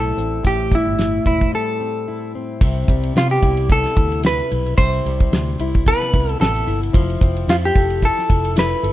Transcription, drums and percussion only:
0.18 closed hi-hat medium
0.45 kick loud
0.45 closed hi-hat medium
0.71 kick medium
0.71 closed hi-hat medium
0.99 snare medium
0.99 closed hi-hat medium
1.26 kick medium
1.26 closed hi-hat medium
1.41 kick medium
2.61 kick loud
2.61 ride medium
2.88 kick loud
2.88 ride medium
3.03 ride soft
3.16 snare loud
3.16 ride medium
3.31 ride soft
3.43 kick medium
3.43 ride medium
3.57 ride soft
3.70 kick medium
3.70 ride medium
3.84 snare soft
3.84 ride soft
3.97 kick loud
3.97 ride medium
4.12 ride soft
4.23 snare loud
4.23 ride medium
4.40 ride soft
4.52 ride medium
4.66 ride soft
4.78 kick loud
4.78 ride medium
4.94 ride soft
5.06 ride medium
5.20 kick medium
5.20 ride soft
5.33 snare loud
5.33 ride medium
5.48 ride soft
5.59 ride medium
5.74 kick medium
5.74 ride soft
5.86 kick medium
5.86 ride medium
6.02 snare soft
6.02 ride soft
6.14 kick medium
6.14 ride medium
6.29 ride soft
6.41 snare loud
6.41 ride medium
6.56 ride soft
6.68 ride medium
6.83 ride soft
6.94 kick loud
6.94 ride medium
7.10 ride soft
7.21 kick loud
7.21 ride medium
7.37 ride soft
7.49 snare loud
7.49 ride medium
7.64 ride soft
7.75 kick loud
7.75 ride medium
7.90 ride soft
8.02 kick medium
8.02 ride medium
8.19 snare soft
8.30 kick loud
8.30 ride medium
8.45 ride soft
8.56 snare loud
8.56 ride medium
8.84 ride medium

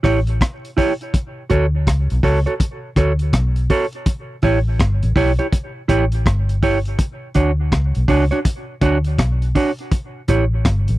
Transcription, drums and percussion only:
0.04 kick medium
0.04 cross-stick medium
0.04 open hi-hat medium
0.27 closed hi-hat medium
0.41 kick loud
0.41 cross-stick loud
0.41 closed hi-hat medium
0.65 closed hi-hat soft
0.78 kick medium
0.78 open hi-hat medium
1.01 closed hi-hat soft
1.14 kick loud
1.14 closed hi-hat medium
1.50 kick medium
1.50 closed hi-hat medium
1.87 kick loud
1.87 cross-stick loud
1.87 closed hi-hat medium
2.10 closed hi-hat soft
2.23 kick medium
2.23 open hi-hat medium
2.47 closed hi-hat soft
2.60 kick loud
2.60 closed hi-hat medium
2.96 kick loud
2.96 cross-stick medium
2.96 closed hi-hat medium
3.19 closed hi-hat soft
3.33 kick loud
3.33 cross-stick loud
3.33 closed hi-hat medium
3.56 closed hi-hat soft
3.70 kick medium
3.70 open hi-hat medium
3.92 closed hi-hat soft
4.06 kick loud
4.06 closed hi-hat medium
4.42 kick medium
4.42 open hi-hat soft
4.80 kick loud
4.80 cross-stick loud
4.80 closed hi-hat medium
5.03 closed hi-hat medium
5.16 kick medium
5.16 open hi-hat medium
5.39 closed hi-hat soft
5.53 kick medium
5.53 closed hi-hat medium
5.89 kick medium
5.89 closed hi-hat medium
6.12 closed hi-hat medium
6.26 kick loud
6.26 cross-stick loud
6.26 closed hi-hat medium
6.49 closed hi-hat soft
6.63 kick medium
6.63 open hi-hat medium
6.85 closed hi-hat soft
6.99 kick loud
6.99 closed hi-hat medium
7.34 kick medium
7.34 closed hi-hat medium
7.72 kick loud
7.72 cross-stick loud
7.72 closed hi-hat medium
7.95 closed hi-hat medium
8.08 kick loud
8.08 open hi-hat medium
8.31 closed hi-hat soft
8.45 kick loud
8.45 closed hi-hat medium
8.81 kick medium
8.81 closed hi-hat medium
9.04 closed hi-hat medium
9.19 kick loud
9.19 cross-stick loud
9.19 closed hi-hat medium
9.42 closed hi-hat soft
9.55 kick medium
9.55 open hi-hat medium
9.79 closed hi-hat soft
9.91 kick loud
9.91 closed hi-hat medium
10.28 kick medium
10.28 closed hi-hat medium
10.65 kick loud
10.65 cross-stick loud
10.65 closed hi-hat medium
10.88 closed hi-hat medium

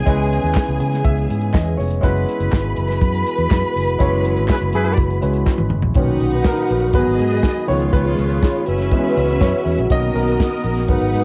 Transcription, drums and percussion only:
0.07 kick medium
0.07 closed hi-hat medium
0.32 closed hi-hat medium
0.43 closed hi-hat soft
0.55 kick loud
0.55 snare loud
0.55 clap medium
0.68 closed hi-hat soft
0.80 closed hi-hat medium
0.92 snare soft
0.92 closed hi-hat soft
1.04 kick loud
1.04 closed hi-hat medium
1.17 closed hi-hat soft
1.30 closed hi-hat medium
1.41 closed hi-hat soft
1.54 kick loud
1.54 snare loud
1.54 clap medium
1.68 closed hi-hat soft
1.80 open hi-hat medium
1.91 closed hi-hat soft
2.03 kick loud
2.03 closed hi-hat medium
2.16 closed hi-hat soft
2.29 closed hi-hat medium
2.40 closed hi-hat soft
2.52 kick loud
2.52 snare loud
2.52 clap medium
2.76 closed hi-hat medium
2.88 snare soft
2.88 closed hi-hat soft
3.01 kick loud
3.01 closed hi-hat medium
3.14 closed hi-hat soft
3.26 closed hi-hat medium
3.38 closed hi-hat soft
3.50 kick loud
3.50 snare loud
3.50 clap medium
3.65 closed hi-hat soft
3.76 open hi-hat medium
3.87 closed hi-hat medium
4.00 kick loud
4.00 closed hi-hat medium
4.13 closed hi-hat soft
4.25 closed hi-hat medium
4.36 closed hi-hat soft
4.48 kick loud
4.48 snare loud
4.48 clap medium
4.61 closed hi-hat soft
4.73 closed hi-hat medium
4.84 closed hi-hat medium
4.97 kick loud
4.97 closed hi-hat medium
5.10 closed hi-hat soft
5.22 closed hi-hat medium
5.33 closed hi-hat soft
5.46 kick loud
5.46 snare medium
5.46 clap medium
5.58 high tom medium
5.70 mid tom medium
5.83 floor tom medium
5.95 kick loud
5.95 closed hi-hat medium
6.20 closed hi-hat medium
6.32 closed hi-hat soft
6.45 kick loud
6.45 snare loud
6.69 closed hi-hat medium
6.80 closed hi-hat soft
6.93 kick loud
6.93 closed hi-hat medium
7.19 closed hi-hat medium
7.30 closed hi-hat soft
7.43 kick loud
7.43 snare loud
7.57 closed hi-hat soft
7.69 open hi-hat medium
7.80 closed hi-hat soft
7.93 kick loud
7.93 closed hi-hat medium
8.06 closed hi-hat soft
8.18 closed hi-hat medium
8.30 closed hi-hat soft
8.43 kick loud
8.43 snare loud
8.54 closed hi-hat soft
8.66 closed hi-hat medium
8.78 snare soft
8.78 closed hi-hat medium
8.91 kick medium
8.91 closed hi-hat medium
9.17 closed hi-hat medium
9.28 closed hi-hat soft
9.41 kick loud
9.41 snare loud
9.54 closed hi-hat soft
9.67 open hi-hat medium
9.78 closed hi-hat soft
9.90 kick medium
9.90 closed hi-hat medium
10.16 closed hi-hat medium
10.27 closed hi-hat soft
10.40 kick loud
10.40 snare loud
10.52 closed hi-hat soft
10.64 closed hi-hat medium
10.75 snare soft
10.75 closed hi-hat medium
10.88 kick loud
10.88 closed hi-hat medium
11.02 closed hi-hat soft
11.14 closed hi-hat medium

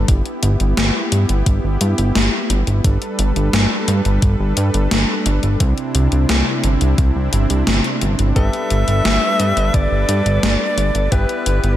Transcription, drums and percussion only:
0.08 kick loud
0.08 closed hi-hat medium
0.26 closed hi-hat soft
0.43 closed hi-hat medium
0.60 closed hi-hat medium
0.77 snare loud
0.77 closed hi-hat medium
1.12 closed hi-hat medium
1.29 closed hi-hat medium
1.46 kick loud
1.46 closed hi-hat medium
1.81 closed hi-hat medium
1.98 closed hi-hat medium
2.15 snare loud
2.15 closed hi-hat medium
2.50 closed hi-hat medium
2.67 closed hi-hat medium
2.84 kick loud
2.84 closed hi-hat medium
3.02 closed hi-hat soft
3.19 closed hi-hat medium
3.36 closed hi-hat medium
3.53 snare loud
3.53 closed hi-hat medium
3.88 closed hi-hat medium
4.05 closed hi-hat medium
4.22 kick loud
4.22 closed hi-hat medium
4.57 closed hi-hat medium
4.74 closed hi-hat medium
4.91 snare loud
4.91 closed hi-hat medium
5.26 closed hi-hat medium
5.43 closed hi-hat medium
5.60 kick loud
5.60 closed hi-hat medium
5.78 closed hi-hat soft
5.95 closed hi-hat medium
6.12 closed hi-hat medium
6.29 snare loud
6.29 closed hi-hat medium
6.64 closed hi-hat medium
6.81 closed hi-hat soft
6.98 kick loud
6.98 closed hi-hat medium
7.33 closed hi-hat medium
7.50 closed hi-hat medium
7.67 snare loud
7.67 closed hi-hat medium
7.84 closed hi-hat soft
8.01 closed hi-hat medium
8.19 closed hi-hat medium
8.36 kick loud
8.36 closed hi-hat medium
8.53 closed hi-hat soft
8.70 closed hi-hat medium
8.88 closed hi-hat soft
9.05 snare loud
9.05 closed hi-hat medium
9.40 closed hi-hat medium
9.57 closed hi-hat soft
9.74 kick loud
9.74 closed hi-hat medium
10.09 closed hi-hat medium
10.26 closed hi-hat soft
10.43 snare loud
10.43 closed hi-hat medium
10.78 closed hi-hat medium
10.95 closed hi-hat soft
11.12 kick loud
11.12 closed hi-hat medium
11.29 closed hi-hat soft
11.46 closed hi-hat medium
11.64 closed hi-hat soft

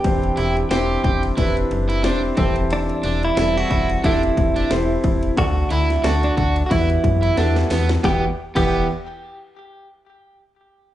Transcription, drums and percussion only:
0.04 kick loud
0.04 ride medium
0.23 ride soft
0.37 ride medium
0.57 ride soft
0.71 snare loud
0.71 ride medium
1.04 kick medium
1.04 ride soft
1.23 ride soft
1.38 kick medium
1.38 ride medium
1.57 ride soft
1.71 ride medium
1.90 ride soft
2.04 snare loud
2.04 ride medium
2.37 kick loud
2.37 ride medium
2.56 ride soft
2.70 ride medium
2.89 ride soft
3.03 ride medium
3.23 ride soft
3.37 snare loud
3.37 ride medium
3.71 kick medium
3.71 ride soft
3.90 ride soft
4.04 kick medium
4.04 ride medium
4.23 ride soft
4.37 kick medium
4.37 ride medium
4.56 ride soft
4.71 snare loud
4.71 ride medium
5.04 kick loud
5.04 ride medium
5.23 ride soft
5.37 kick loud
5.37 ride medium
5.70 ride medium
5.90 snare soft
5.90 ride soft
6.04 snare loud
6.04 ride medium
6.23 ride soft
6.37 kick medium
6.37 ride soft
6.56 ride soft
6.71 kick medium
6.71 ride medium
6.90 ride soft
7.04 kick medium
7.04 ride medium
7.23 ride soft
7.37 snare medium
7.37 ride medium
7.56 snare medium
7.56 ride soft
7.70 snare loud
7.70 open hi-hat medium
7.70 ride medium
7.89 snare loud
7.89 ride soft
8.04 kick loud
8.04 snare medium
8.56 kick loud
8.56 crash medium

